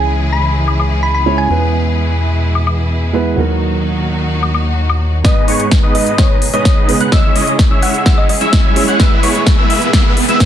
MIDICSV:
0, 0, Header, 1, 9, 480
1, 0, Start_track
1, 0, Key_signature, 5, "minor"
1, 0, Tempo, 468750
1, 1533, Time_signature, 4, 2, 24, 8
1, 10704, End_track
2, 0, Start_track
2, 0, Title_t, "Analog synth lead"
2, 0, Program_c, 0, 81
2, 5371, Note_on_c, 0, 87, 102
2, 5583, Note_off_c, 0, 87, 0
2, 5612, Note_on_c, 0, 85, 89
2, 5791, Note_off_c, 0, 85, 0
2, 5971, Note_on_c, 0, 87, 84
2, 6303, Note_off_c, 0, 87, 0
2, 6332, Note_on_c, 0, 87, 81
2, 6511, Note_off_c, 0, 87, 0
2, 6692, Note_on_c, 0, 87, 99
2, 7143, Note_off_c, 0, 87, 0
2, 7172, Note_on_c, 0, 90, 97
2, 7264, Note_off_c, 0, 90, 0
2, 7292, Note_on_c, 0, 88, 112
2, 7504, Note_off_c, 0, 88, 0
2, 7533, Note_on_c, 0, 87, 87
2, 7711, Note_off_c, 0, 87, 0
2, 7893, Note_on_c, 0, 88, 81
2, 8224, Note_off_c, 0, 88, 0
2, 8253, Note_on_c, 0, 88, 84
2, 8431, Note_off_c, 0, 88, 0
2, 8613, Note_on_c, 0, 88, 97
2, 9064, Note_off_c, 0, 88, 0
2, 9093, Note_on_c, 0, 90, 95
2, 9184, Note_off_c, 0, 90, 0
2, 9213, Note_on_c, 0, 88, 103
2, 9424, Note_off_c, 0, 88, 0
2, 9454, Note_on_c, 0, 85, 91
2, 9632, Note_off_c, 0, 85, 0
2, 9813, Note_on_c, 0, 88, 86
2, 10144, Note_off_c, 0, 88, 0
2, 10173, Note_on_c, 0, 88, 83
2, 10351, Note_off_c, 0, 88, 0
2, 10533, Note_on_c, 0, 88, 96
2, 10704, Note_off_c, 0, 88, 0
2, 10704, End_track
3, 0, Start_track
3, 0, Title_t, "Synth pluck"
3, 0, Program_c, 1, 84
3, 333, Note_on_c, 1, 83, 89
3, 513, Note_off_c, 1, 83, 0
3, 1053, Note_on_c, 1, 83, 89
3, 1130, Note_off_c, 1, 83, 0
3, 1173, Note_on_c, 1, 83, 76
3, 1250, Note_off_c, 1, 83, 0
3, 1413, Note_on_c, 1, 80, 93
3, 1581, Note_off_c, 1, 80, 0
3, 5373, Note_on_c, 1, 75, 90
3, 5553, Note_off_c, 1, 75, 0
3, 6092, Note_on_c, 1, 75, 90
3, 6272, Note_off_c, 1, 75, 0
3, 6333, Note_on_c, 1, 73, 91
3, 6513, Note_off_c, 1, 73, 0
3, 6693, Note_on_c, 1, 73, 88
3, 7053, Note_off_c, 1, 73, 0
3, 7294, Note_on_c, 1, 75, 86
3, 7653, Note_off_c, 1, 75, 0
3, 8015, Note_on_c, 1, 78, 89
3, 8194, Note_off_c, 1, 78, 0
3, 8374, Note_on_c, 1, 75, 91
3, 8450, Note_off_c, 1, 75, 0
3, 8495, Note_on_c, 1, 75, 76
3, 8571, Note_off_c, 1, 75, 0
3, 10704, End_track
4, 0, Start_track
4, 0, Title_t, "Supersaw synth"
4, 0, Program_c, 2, 81
4, 5372, Note_on_c, 2, 56, 97
4, 5372, Note_on_c, 2, 59, 93
4, 5372, Note_on_c, 2, 63, 91
4, 5372, Note_on_c, 2, 71, 88
4, 5372, Note_on_c, 2, 75, 111
4, 5584, Note_off_c, 2, 56, 0
4, 5584, Note_off_c, 2, 59, 0
4, 5584, Note_off_c, 2, 63, 0
4, 5584, Note_off_c, 2, 71, 0
4, 5584, Note_off_c, 2, 75, 0
4, 5612, Note_on_c, 2, 56, 74
4, 5612, Note_on_c, 2, 59, 71
4, 5612, Note_on_c, 2, 63, 69
4, 5612, Note_on_c, 2, 71, 72
4, 5613, Note_on_c, 2, 73, 89
4, 5791, Note_off_c, 2, 56, 0
4, 5791, Note_off_c, 2, 59, 0
4, 5791, Note_off_c, 2, 63, 0
4, 5791, Note_off_c, 2, 71, 0
4, 5791, Note_off_c, 2, 73, 0
4, 5973, Note_on_c, 2, 56, 79
4, 5973, Note_on_c, 2, 59, 74
4, 5973, Note_on_c, 2, 63, 73
4, 5973, Note_on_c, 2, 71, 70
4, 5973, Note_on_c, 2, 75, 88
4, 6304, Note_off_c, 2, 56, 0
4, 6304, Note_off_c, 2, 59, 0
4, 6304, Note_off_c, 2, 63, 0
4, 6304, Note_off_c, 2, 71, 0
4, 6304, Note_off_c, 2, 75, 0
4, 6332, Note_on_c, 2, 59, 67
4, 6333, Note_on_c, 2, 56, 75
4, 6333, Note_on_c, 2, 63, 68
4, 6333, Note_on_c, 2, 75, 81
4, 6511, Note_off_c, 2, 56, 0
4, 6511, Note_off_c, 2, 59, 0
4, 6511, Note_off_c, 2, 63, 0
4, 6511, Note_off_c, 2, 75, 0
4, 6692, Note_on_c, 2, 56, 101
4, 6692, Note_on_c, 2, 59, 92
4, 6692, Note_on_c, 2, 63, 90
4, 6692, Note_on_c, 2, 71, 91
4, 6692, Note_on_c, 2, 75, 104
4, 7144, Note_off_c, 2, 56, 0
4, 7144, Note_off_c, 2, 59, 0
4, 7144, Note_off_c, 2, 63, 0
4, 7144, Note_off_c, 2, 71, 0
4, 7144, Note_off_c, 2, 75, 0
4, 7173, Note_on_c, 2, 56, 88
4, 7173, Note_on_c, 2, 59, 82
4, 7173, Note_on_c, 2, 63, 82
4, 7173, Note_on_c, 2, 71, 78
4, 7173, Note_on_c, 2, 78, 94
4, 7264, Note_off_c, 2, 56, 0
4, 7264, Note_off_c, 2, 59, 0
4, 7264, Note_off_c, 2, 63, 0
4, 7264, Note_off_c, 2, 71, 0
4, 7264, Note_off_c, 2, 78, 0
4, 7292, Note_on_c, 2, 61, 90
4, 7292, Note_on_c, 2, 64, 96
4, 7292, Note_on_c, 2, 76, 116
4, 7293, Note_on_c, 2, 56, 101
4, 7293, Note_on_c, 2, 73, 94
4, 7504, Note_off_c, 2, 56, 0
4, 7504, Note_off_c, 2, 61, 0
4, 7504, Note_off_c, 2, 64, 0
4, 7504, Note_off_c, 2, 73, 0
4, 7504, Note_off_c, 2, 76, 0
4, 7533, Note_on_c, 2, 56, 76
4, 7533, Note_on_c, 2, 61, 69
4, 7533, Note_on_c, 2, 64, 73
4, 7533, Note_on_c, 2, 73, 69
4, 7533, Note_on_c, 2, 75, 82
4, 7711, Note_off_c, 2, 56, 0
4, 7711, Note_off_c, 2, 61, 0
4, 7711, Note_off_c, 2, 64, 0
4, 7711, Note_off_c, 2, 73, 0
4, 7711, Note_off_c, 2, 75, 0
4, 7893, Note_on_c, 2, 56, 79
4, 7893, Note_on_c, 2, 61, 75
4, 7893, Note_on_c, 2, 64, 71
4, 7893, Note_on_c, 2, 73, 75
4, 7893, Note_on_c, 2, 76, 83
4, 8224, Note_off_c, 2, 56, 0
4, 8224, Note_off_c, 2, 61, 0
4, 8224, Note_off_c, 2, 64, 0
4, 8224, Note_off_c, 2, 73, 0
4, 8224, Note_off_c, 2, 76, 0
4, 8252, Note_on_c, 2, 56, 80
4, 8252, Note_on_c, 2, 61, 68
4, 8252, Note_on_c, 2, 73, 67
4, 8431, Note_off_c, 2, 56, 0
4, 8431, Note_off_c, 2, 61, 0
4, 8431, Note_off_c, 2, 73, 0
4, 8611, Note_on_c, 2, 73, 92
4, 8612, Note_on_c, 2, 56, 103
4, 8612, Note_on_c, 2, 61, 91
4, 8612, Note_on_c, 2, 64, 95
4, 8612, Note_on_c, 2, 76, 109
4, 9063, Note_off_c, 2, 73, 0
4, 9063, Note_off_c, 2, 76, 0
4, 9064, Note_off_c, 2, 56, 0
4, 9064, Note_off_c, 2, 61, 0
4, 9064, Note_off_c, 2, 64, 0
4, 9092, Note_on_c, 2, 56, 86
4, 9092, Note_on_c, 2, 61, 80
4, 9092, Note_on_c, 2, 64, 84
4, 9092, Note_on_c, 2, 73, 80
4, 9092, Note_on_c, 2, 78, 99
4, 9184, Note_off_c, 2, 56, 0
4, 9184, Note_off_c, 2, 61, 0
4, 9184, Note_off_c, 2, 64, 0
4, 9184, Note_off_c, 2, 73, 0
4, 9184, Note_off_c, 2, 78, 0
4, 9212, Note_on_c, 2, 56, 97
4, 9212, Note_on_c, 2, 59, 99
4, 9212, Note_on_c, 2, 64, 97
4, 9212, Note_on_c, 2, 71, 93
4, 9212, Note_on_c, 2, 76, 114
4, 9424, Note_off_c, 2, 56, 0
4, 9424, Note_off_c, 2, 59, 0
4, 9424, Note_off_c, 2, 64, 0
4, 9424, Note_off_c, 2, 71, 0
4, 9424, Note_off_c, 2, 76, 0
4, 9452, Note_on_c, 2, 56, 76
4, 9452, Note_on_c, 2, 59, 74
4, 9452, Note_on_c, 2, 64, 69
4, 9452, Note_on_c, 2, 71, 73
4, 9452, Note_on_c, 2, 73, 89
4, 9631, Note_off_c, 2, 56, 0
4, 9631, Note_off_c, 2, 59, 0
4, 9631, Note_off_c, 2, 64, 0
4, 9631, Note_off_c, 2, 71, 0
4, 9631, Note_off_c, 2, 73, 0
4, 9813, Note_on_c, 2, 56, 83
4, 9813, Note_on_c, 2, 59, 73
4, 9813, Note_on_c, 2, 64, 76
4, 9813, Note_on_c, 2, 71, 75
4, 9813, Note_on_c, 2, 76, 89
4, 10144, Note_off_c, 2, 56, 0
4, 10144, Note_off_c, 2, 59, 0
4, 10144, Note_off_c, 2, 64, 0
4, 10144, Note_off_c, 2, 71, 0
4, 10144, Note_off_c, 2, 76, 0
4, 10173, Note_on_c, 2, 64, 68
4, 10351, Note_off_c, 2, 64, 0
4, 10532, Note_on_c, 2, 56, 95
4, 10532, Note_on_c, 2, 59, 91
4, 10533, Note_on_c, 2, 64, 89
4, 10533, Note_on_c, 2, 71, 91
4, 10533, Note_on_c, 2, 76, 110
4, 10704, Note_off_c, 2, 56, 0
4, 10704, Note_off_c, 2, 59, 0
4, 10704, Note_off_c, 2, 64, 0
4, 10704, Note_off_c, 2, 71, 0
4, 10704, Note_off_c, 2, 76, 0
4, 10704, End_track
5, 0, Start_track
5, 0, Title_t, "Grand piano"
5, 0, Program_c, 3, 0
5, 0, Control_c, 3, 64, 127
5, 0, Note_on_c, 3, 49, 76
5, 0, Note_on_c, 3, 56, 63
5, 0, Note_on_c, 3, 61, 65
5, 0, Note_on_c, 3, 64, 67
5, 0, Note_on_c, 3, 73, 80
5, 1258, Note_off_c, 3, 49, 0
5, 1261, Note_off_c, 3, 56, 0
5, 1264, Note_off_c, 3, 61, 0
5, 1267, Note_off_c, 3, 64, 0
5, 1270, Note_off_c, 3, 73, 0
5, 1287, Note_on_c, 3, 56, 91
5, 1291, Note_on_c, 3, 61, 81
5, 1295, Note_on_c, 3, 64, 83
5, 1299, Note_on_c, 3, 73, 100
5, 1501, Note_off_c, 3, 56, 0
5, 1503, Note_off_c, 3, 61, 0
5, 1505, Note_off_c, 3, 64, 0
5, 1507, Note_off_c, 3, 73, 0
5, 1521, Note_on_c, 3, 56, 72
5, 1528, Note_on_c, 3, 59, 65
5, 1536, Note_on_c, 3, 64, 66
5, 1544, Note_on_c, 3, 71, 81
5, 1546, Control_c, 3, 64, 0
5, 1711, Control_c, 3, 64, 127
5, 3178, Note_off_c, 3, 56, 0
5, 3182, Note_off_c, 3, 59, 0
5, 3186, Note_off_c, 3, 64, 0
5, 3190, Note_off_c, 3, 71, 0
5, 3206, Note_on_c, 3, 56, 86
5, 3210, Note_on_c, 3, 59, 83
5, 3215, Note_on_c, 3, 64, 85
5, 3218, Note_on_c, 3, 71, 96
5, 3421, Note_off_c, 3, 56, 0
5, 3423, Note_off_c, 3, 59, 0
5, 3425, Note_off_c, 3, 64, 0
5, 3427, Note_off_c, 3, 71, 0
5, 3440, Note_on_c, 3, 54, 75
5, 3448, Note_on_c, 3, 58, 67
5, 3456, Note_on_c, 3, 63, 66
5, 3465, Control_c, 3, 64, 0
5, 3465, Note_on_c, 3, 70, 78
5, 3626, Control_c, 3, 64, 127
5, 5098, Note_off_c, 3, 54, 0
5, 5101, Note_off_c, 3, 58, 0
5, 5106, Note_off_c, 3, 63, 0
5, 5110, Note_off_c, 3, 70, 0
5, 5360, Note_on_c, 3, 44, 70
5, 5366, Note_on_c, 3, 56, 69
5, 5372, Note_on_c, 3, 59, 69
5, 5378, Note_on_c, 3, 63, 67
5, 5384, Note_on_c, 3, 71, 77
5, 5385, Control_c, 3, 64, 0
5, 5573, Control_c, 3, 64, 127
5, 7017, Note_off_c, 3, 44, 0
5, 7020, Note_off_c, 3, 56, 0
5, 7024, Note_off_c, 3, 59, 0
5, 7027, Note_off_c, 3, 63, 0
5, 7030, Note_off_c, 3, 71, 0
5, 7045, Note_on_c, 3, 49, 87
5, 7048, Note_on_c, 3, 56, 81
5, 7051, Note_on_c, 3, 59, 85
5, 7054, Note_on_c, 3, 63, 87
5, 7058, Note_on_c, 3, 71, 99
5, 7260, Note_off_c, 3, 49, 0
5, 7262, Note_off_c, 3, 56, 0
5, 7263, Note_off_c, 3, 59, 0
5, 7265, Note_off_c, 3, 63, 0
5, 7266, Note_off_c, 3, 71, 0
5, 7281, Note_on_c, 3, 49, 71
5, 7287, Note_on_c, 3, 56, 70
5, 7293, Note_on_c, 3, 61, 68
5, 7300, Note_on_c, 3, 64, 67
5, 7306, Control_c, 3, 64, 0
5, 7306, Note_on_c, 3, 73, 81
5, 7506, Control_c, 3, 64, 127
5, 8938, Note_off_c, 3, 49, 0
5, 8941, Note_off_c, 3, 56, 0
5, 8944, Note_off_c, 3, 61, 0
5, 8948, Note_off_c, 3, 64, 0
5, 8950, Note_off_c, 3, 73, 0
5, 8967, Note_on_c, 3, 56, 96
5, 8971, Note_on_c, 3, 61, 82
5, 8975, Note_on_c, 3, 64, 82
5, 8979, Note_on_c, 3, 73, 104
5, 9181, Note_off_c, 3, 56, 0
5, 9183, Note_off_c, 3, 61, 0
5, 9185, Note_off_c, 3, 64, 0
5, 9187, Note_off_c, 3, 73, 0
5, 9201, Note_on_c, 3, 56, 77
5, 9210, Note_on_c, 3, 59, 70
5, 9217, Note_on_c, 3, 64, 73
5, 9226, Control_c, 3, 64, 0
5, 9226, Note_on_c, 3, 71, 81
5, 9384, Control_c, 3, 64, 127
5, 10704, Note_off_c, 3, 56, 0
5, 10704, Note_off_c, 3, 59, 0
5, 10704, Note_off_c, 3, 64, 0
5, 10704, Note_off_c, 3, 71, 0
5, 10704, End_track
6, 0, Start_track
6, 0, Title_t, "String section"
6, 0, Program_c, 4, 48
6, 0, Note_on_c, 4, 49, 69
6, 0, Note_on_c, 4, 52, 65
6, 0, Note_on_c, 4, 56, 62
6, 0, Note_on_c, 4, 64, 62
6, 0, Note_on_c, 4, 68, 70
6, 1513, Note_off_c, 4, 49, 0
6, 1513, Note_off_c, 4, 52, 0
6, 1513, Note_off_c, 4, 64, 0
6, 1532, Note_on_c, 4, 47, 68
6, 1532, Note_on_c, 4, 52, 61
6, 1532, Note_on_c, 4, 64, 62
6, 3412, Note_off_c, 4, 56, 0
6, 3412, Note_off_c, 4, 68, 0
6, 3433, Note_off_c, 4, 47, 0
6, 3433, Note_off_c, 4, 52, 0
6, 3433, Note_off_c, 4, 64, 0
6, 3453, Note_on_c, 4, 46, 66
6, 3453, Note_on_c, 4, 51, 61
6, 3453, Note_on_c, 4, 63, 63
6, 3454, Note_on_c, 4, 54, 64
6, 3454, Note_on_c, 4, 66, 72
6, 5354, Note_off_c, 4, 46, 0
6, 5354, Note_off_c, 4, 51, 0
6, 5354, Note_off_c, 4, 54, 0
6, 5354, Note_off_c, 4, 63, 0
6, 5354, Note_off_c, 4, 66, 0
6, 5372, Note_on_c, 4, 47, 71
6, 5372, Note_on_c, 4, 63, 62
6, 5373, Note_on_c, 4, 51, 60
6, 5373, Note_on_c, 4, 56, 63
6, 5373, Note_on_c, 4, 68, 76
6, 7273, Note_off_c, 4, 47, 0
6, 7273, Note_off_c, 4, 63, 0
6, 7274, Note_off_c, 4, 51, 0
6, 7291, Note_on_c, 4, 52, 68
6, 7291, Note_on_c, 4, 64, 66
6, 7292, Note_on_c, 4, 49, 70
6, 9193, Note_off_c, 4, 49, 0
6, 9193, Note_off_c, 4, 52, 0
6, 9213, Note_on_c, 4, 47, 70
6, 9213, Note_on_c, 4, 52, 68
6, 10704, Note_off_c, 4, 47, 0
6, 10704, Note_off_c, 4, 52, 0
6, 10704, Note_off_c, 4, 56, 0
6, 10704, Note_off_c, 4, 64, 0
6, 10704, Note_off_c, 4, 68, 0
6, 10704, End_track
7, 0, Start_track
7, 0, Title_t, "Analog synth bass"
7, 0, Program_c, 5, 38
7, 0, Note_on_c, 5, 37, 83
7, 1509, Note_off_c, 5, 37, 0
7, 1533, Note_on_c, 5, 40, 88
7, 3429, Note_off_c, 5, 40, 0
7, 3452, Note_on_c, 5, 39, 85
7, 5348, Note_off_c, 5, 39, 0
7, 10704, End_track
8, 0, Start_track
8, 0, Title_t, "Riser"
8, 0, Program_c, 6, 103
8, 5372, Note_on_c, 6, 60, 74
8, 10704, Note_off_c, 6, 60, 0
8, 10704, End_track
9, 0, Start_track
9, 0, Title_t, "Drums"
9, 693, Note_on_c, 9, 76, 57
9, 796, Note_off_c, 9, 76, 0
9, 814, Note_on_c, 9, 76, 70
9, 916, Note_off_c, 9, 76, 0
9, 2613, Note_on_c, 9, 76, 56
9, 2715, Note_off_c, 9, 76, 0
9, 2733, Note_on_c, 9, 76, 71
9, 2835, Note_off_c, 9, 76, 0
9, 4533, Note_on_c, 9, 76, 55
9, 4635, Note_off_c, 9, 76, 0
9, 4653, Note_on_c, 9, 76, 71
9, 4756, Note_off_c, 9, 76, 0
9, 5013, Note_on_c, 9, 76, 77
9, 5115, Note_off_c, 9, 76, 0
9, 5371, Note_on_c, 9, 36, 106
9, 5372, Note_on_c, 9, 38, 48
9, 5372, Note_on_c, 9, 42, 77
9, 5474, Note_off_c, 9, 36, 0
9, 5475, Note_off_c, 9, 38, 0
9, 5475, Note_off_c, 9, 42, 0
9, 5612, Note_on_c, 9, 46, 97
9, 5715, Note_off_c, 9, 46, 0
9, 5732, Note_on_c, 9, 42, 54
9, 5834, Note_off_c, 9, 42, 0
9, 5851, Note_on_c, 9, 36, 117
9, 5852, Note_on_c, 9, 38, 48
9, 5852, Note_on_c, 9, 42, 79
9, 5954, Note_off_c, 9, 36, 0
9, 5954, Note_off_c, 9, 38, 0
9, 5954, Note_off_c, 9, 42, 0
9, 6092, Note_on_c, 9, 46, 99
9, 6195, Note_off_c, 9, 46, 0
9, 6212, Note_on_c, 9, 42, 50
9, 6314, Note_off_c, 9, 42, 0
9, 6332, Note_on_c, 9, 36, 113
9, 6332, Note_on_c, 9, 38, 49
9, 6332, Note_on_c, 9, 42, 82
9, 6434, Note_off_c, 9, 36, 0
9, 6435, Note_off_c, 9, 38, 0
9, 6435, Note_off_c, 9, 42, 0
9, 6572, Note_on_c, 9, 46, 102
9, 6675, Note_off_c, 9, 46, 0
9, 6692, Note_on_c, 9, 42, 55
9, 6795, Note_off_c, 9, 42, 0
9, 6812, Note_on_c, 9, 36, 116
9, 6813, Note_on_c, 9, 38, 50
9, 6813, Note_on_c, 9, 42, 83
9, 6914, Note_off_c, 9, 36, 0
9, 6915, Note_off_c, 9, 38, 0
9, 6915, Note_off_c, 9, 42, 0
9, 7053, Note_on_c, 9, 46, 108
9, 7156, Note_off_c, 9, 46, 0
9, 7173, Note_on_c, 9, 42, 52
9, 7276, Note_off_c, 9, 42, 0
9, 7292, Note_on_c, 9, 36, 119
9, 7293, Note_on_c, 9, 38, 52
9, 7293, Note_on_c, 9, 42, 72
9, 7394, Note_off_c, 9, 36, 0
9, 7395, Note_off_c, 9, 38, 0
9, 7395, Note_off_c, 9, 42, 0
9, 7533, Note_on_c, 9, 46, 105
9, 7635, Note_off_c, 9, 46, 0
9, 7653, Note_on_c, 9, 42, 47
9, 7755, Note_off_c, 9, 42, 0
9, 7772, Note_on_c, 9, 36, 115
9, 7773, Note_on_c, 9, 38, 53
9, 7773, Note_on_c, 9, 42, 75
9, 7874, Note_off_c, 9, 36, 0
9, 7875, Note_off_c, 9, 38, 0
9, 7875, Note_off_c, 9, 42, 0
9, 8013, Note_on_c, 9, 46, 110
9, 8115, Note_off_c, 9, 46, 0
9, 8133, Note_on_c, 9, 42, 48
9, 8236, Note_off_c, 9, 42, 0
9, 8252, Note_on_c, 9, 36, 119
9, 8253, Note_on_c, 9, 38, 54
9, 8253, Note_on_c, 9, 42, 78
9, 8354, Note_off_c, 9, 36, 0
9, 8355, Note_off_c, 9, 38, 0
9, 8355, Note_off_c, 9, 42, 0
9, 8493, Note_on_c, 9, 46, 103
9, 8595, Note_off_c, 9, 46, 0
9, 8613, Note_on_c, 9, 42, 54
9, 8715, Note_off_c, 9, 42, 0
9, 8732, Note_on_c, 9, 36, 117
9, 8733, Note_on_c, 9, 38, 57
9, 8733, Note_on_c, 9, 42, 81
9, 8834, Note_off_c, 9, 36, 0
9, 8835, Note_off_c, 9, 38, 0
9, 8835, Note_off_c, 9, 42, 0
9, 8973, Note_on_c, 9, 46, 109
9, 9075, Note_off_c, 9, 46, 0
9, 9093, Note_on_c, 9, 42, 53
9, 9196, Note_off_c, 9, 42, 0
9, 9212, Note_on_c, 9, 36, 124
9, 9213, Note_on_c, 9, 38, 56
9, 9213, Note_on_c, 9, 42, 75
9, 9314, Note_off_c, 9, 36, 0
9, 9315, Note_off_c, 9, 38, 0
9, 9315, Note_off_c, 9, 42, 0
9, 9453, Note_on_c, 9, 46, 107
9, 9555, Note_off_c, 9, 46, 0
9, 9573, Note_on_c, 9, 42, 45
9, 9676, Note_off_c, 9, 42, 0
9, 9692, Note_on_c, 9, 36, 114
9, 9693, Note_on_c, 9, 38, 60
9, 9693, Note_on_c, 9, 42, 75
9, 9794, Note_off_c, 9, 36, 0
9, 9796, Note_off_c, 9, 38, 0
9, 9796, Note_off_c, 9, 42, 0
9, 9933, Note_on_c, 9, 46, 104
9, 10036, Note_off_c, 9, 46, 0
9, 10054, Note_on_c, 9, 42, 50
9, 10156, Note_off_c, 9, 42, 0
9, 10172, Note_on_c, 9, 36, 123
9, 10173, Note_on_c, 9, 38, 66
9, 10173, Note_on_c, 9, 42, 77
9, 10274, Note_off_c, 9, 36, 0
9, 10276, Note_off_c, 9, 38, 0
9, 10276, Note_off_c, 9, 42, 0
9, 10413, Note_on_c, 9, 46, 99
9, 10516, Note_off_c, 9, 46, 0
9, 10533, Note_on_c, 9, 42, 52
9, 10636, Note_off_c, 9, 42, 0
9, 10652, Note_on_c, 9, 36, 127
9, 10654, Note_on_c, 9, 38, 65
9, 10654, Note_on_c, 9, 42, 82
9, 10704, Note_off_c, 9, 36, 0
9, 10704, Note_off_c, 9, 38, 0
9, 10704, Note_off_c, 9, 42, 0
9, 10704, End_track
0, 0, End_of_file